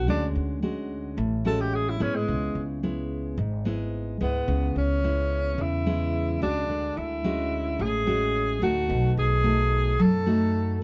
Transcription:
0.07 D2 D3 G#3 C#4 D4 F#4
0.35 D2
0.62 G#3 C#4 F#4
1.17 A1 A2
1.45 G#3 C#4 F#4 A4
1.61 G4
1.74 G#4
1.89 E4
2.00 G#2 G#3 B3 C#4 E4
2.15 G#3
2.28 C#2 C#3
2.55 C#2
2.83 G#3 B3 E4
3.38 G#1 G#2
3.65 G#3 B3 E4
4.21 C#2 G#3 B3 E4
4.48 C#2 C#3
4.76 C#2 C#4
5.04 G#3 B3 E4
5.58 E2 C#3 E4
5.86 G#3 B3 E4
6.42 C#2 G#3 D4 F#4
6.69 D2 D3
6.97 D2 E4
7.24 G#3 C#4 F#4
7.79 A1 A2 G#4
8.06 G#3 C#4 F#4
8.62 D2 A3 D#4 F#4
8.88 B1 B2
9.17 B1 G#4
9.44 A3 D#4 F#4
9.99 F#2 F#3 A4
10.26 A3 D#4 F#4

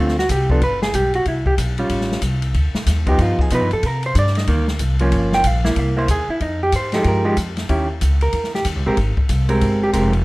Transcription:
Already playing: D2
0.00 D3 A3 C4 F4
0.08 snare
0.19 F#4, snare
0.29 C2 G4, kick, hi-hat pedal, ride
0.50 F3 B3 D4 A4, kick
0.61 G1 B4, kick, ride
0.82 G#4, snare
0.94 B1 G4, kick, hi-hat pedal, ride
1.14 F#4, ride
1.25 C2 E4, kick, ride
1.46 G4, kick
1.58 B1, kick, hi-hat pedal, ride
1.78 G3 C#4 F4, ride
1.89 A1, kick, ride
2.01 snare
2.12 snare
2.22 C2, kick, hi-hat pedal, ride
2.42 ride
2.54 D2, kick, ride
2.74 muted upright bass stroke, snare
2.86 D#2, kick, snare, hi-hat pedal, ride
3.06 F3 B3 D#4 G4, kick, ride
3.18 G2 F4, kick, ride
3.39 G#4, muted upright bass stroke, kick
3.50 B2 F3 B3 D#4, kick, hi-hat pedal, ride
3.55 B4
3.62 G2
3.71 F2 A4, ride
3.83 C3 A#4, kick, ride
4.03 C5, ride
4.15 G2 D5, kick, hi-hat pedal, ride
4.27 snare
4.35 D#5, snare, ride
4.47 D2 D#3 A#3, kick, ride
4.68 snare
4.79 C2, kick, hi-hat pedal, ride
4.99 F3 A#3 C#4, ride
5.12 G1, kick, ride
5.32 G5, snare
5.44 A#1 F5, kick, hi-hat pedal, ride
5.64 A#3 E4, snare
5.76 C2 E5, kick, ride
5.97 A#3 E4 C5
6.08 D#2 G#4, kick, hi-hat pedal, ride
6.28 E4, muted upright bass stroke
6.40 F2 D#4, kick, ride
6.63 G4
6.72 G#2 C5, kick, hi-hat pedal, ride
6.92 F3 G#3 D#4 G4 A4, snare, ride
7.04 G2 A#4, kick, ride
7.24 F3 G#3 D#4 G4
7.37 F2, kick, hi-hat pedal, ride
7.57 snare, ride
7.69 D#2 D#3 C#4 E4 G4, kick, ride
8.01 C#2, kick, hi-hat pedal, ride
8.21 A#4, ride
8.33 E2, kick, ride
8.44 snare
8.54 G4, snare
8.65 D#2, kick, hi-hat pedal, ride
8.76 C#2
8.86 A#1 G#3 C4 G4 A#4
8.97 G#1, kick, ride
9.17 muted upright bass stroke, kick
9.29 C2, kick, hi-hat pedal, ride
9.49 G#3 C4 G4 A#4, ride
9.61 G1, kick, ride
9.83 G4
9.93 F1 G#3 C4 G4 A#4, kick, hi-hat pedal, ride
10.13 ride

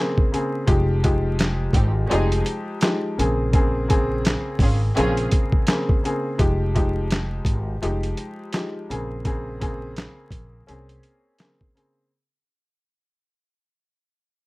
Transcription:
Already playing: C#3 A#3 C4 G#4
0.18 kick
0.32 C#3 A#3 C4 G#4, closed hi-hat
0.66 F1 F3 G#3 D#4 G4, kick, closed hi-hat
1.03 F3 G#3 D#4 G4, kick, closed hi-hat
1.39 snare, clap, closed hi-hat
1.73 G#1 C4 D#4 G4, kick, closed hi-hat
2.10 F1 F3 G#3 C4 D#4 G4 G#4, closed hi-hat
2.32 closed hi-hat
2.46 closed hi-hat
2.81 F3 G#3 D#4 G4, snare, clap, closed hi-hat
3.18 A#1 C#3 A#3 C4 G#4, closed hi-hat
3.53 C#3 A#3 C4 G#4, kick, closed hi-hat
3.88 C#3 A#3 C4 G#4, kick, closed hi-hat
4.25 snare, clap, closed hi-hat
4.59 G#1 C#4 F4 G#4, kick, open hi-hat
4.96 A#1 C#3 A#3 C4 C#4 F4 G#4, closed hi-hat
5.17 closed hi-hat
5.32 kick, closed hi-hat
5.52 kick
5.67 C#3 A#3 C4 G#4, snare, clap, closed hi-hat
5.89 kick
6.04 C#3 A#3 C4 G#4, closed hi-hat
6.38 F1 F3 G#3 D#4 G4, kick, closed hi-hat
6.74 F3 G#3 D#4 G4, kick, closed hi-hat
7.11 snare, clap, closed hi-hat
7.45 G#1, kick, closed hi-hat
7.81 F1 F3 G#3 D#4 G4, closed hi-hat
8.03 closed hi-hat
8.17 closed hi-hat
8.53 F3 G#3 D#4 G4, snare, clap, closed hi-hat
8.89 A#1 C#3 A#3 C4 G#4, closed hi-hat
9.25 C#3 A#3 C4 G#4, kick, closed hi-hat
9.60 C#3 A#3 C4 G#4, kick, closed hi-hat
9.96 snare, clap, closed hi-hat
10.31 A#1, kick, closed hi-hat
10.67 C2 A#3 C4 C#4 G#4, closed hi-hat
10.89 closed hi-hat
11.03 closed hi-hat
11.38 C#3 A#3 C4 G#4, snare, clap, closed hi-hat
11.61 kick
11.75 C#3 A#3 C4 G#4, closed hi-hat

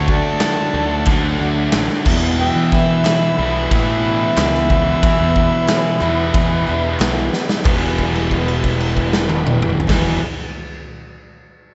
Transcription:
Already playing: D2 D3 F#3 A3 D4 C#5
0.08 A3 D4 F#4 A4 D5, kick
0.40 D3 A3 D4 F#4, snare, clap, ride bell
0.73 D2 A3 D4 F#4
1.05 D2 D3 A3 D4, kick, ride bell
1.10 F#4
1.40 D2 A3 D4 F#4
1.72 A1 D3 A3 D4, snare, clap, ride bell
1.76 F#4
1.89 snare
2.05 E2 B2 E3 G3 B3 E4 B4, kick, crash
2.39 E2 B2 E3 G3 B3 E4 E5 G5
2.55 E3
2.72 E3 G3 B3 E4 B4 E5, kick, snare
3.05 E2 B2 E3 G3 B3 E4, snare, clap, ride bell
3.37 B1 B2 E3 G3 B3 E4
3.42 E2
3.71 A2 E3 G3 B3 E4 B4, kick, ride bell
3.75 E5
4.06 E3 G3 B3 E4
4.37 C#2 E2 B2 E3 G3 B3 E4, snare, clap, ride bell
4.54 snare
4.69 E2 B2 E3 G3 B3 C4 E4 F4 G#4 C5, kick
4.93 B3 E4 G4 B4
5.03 E2 B2 E3 G3 B3 E4, kick, ride bell
5.20 E2
5.35 E3 G3 B3 E4, kick
5.67 E2 B2 E3 G3 B3 E4, snare, clap, ride bell
6.00 E2 B2 E3 G3 B3 E4, clap
6.33 E2 E3 G3 B3 E4, kick, ride bell
6.66 E2 E3 G3 B3 E4
7.00 B1 E2 B2 E3 G3 B3 E4, snare, clap, ride bell
7.33 E3 G3 B3 E4, snare
7.49 snare
7.63 E1 E2 B2 G3 B3 E4 B4, kick, clap, crash
7.68 E3 G3 B3
7.72 E4
7.98 kick, crash
8.15 crash
8.31 kick, crash
8.48 crash
8.64 kick, crash
8.80 crash
8.97 kick, crash
9.13 snare
9.29 high tom
9.47 mid tom
9.62 mid tom
9.80 floor tom
9.87 E1 E2 B2 E3 G3 B3 E4 B4, kick, snare, crash
9.93 G3 B3 E4

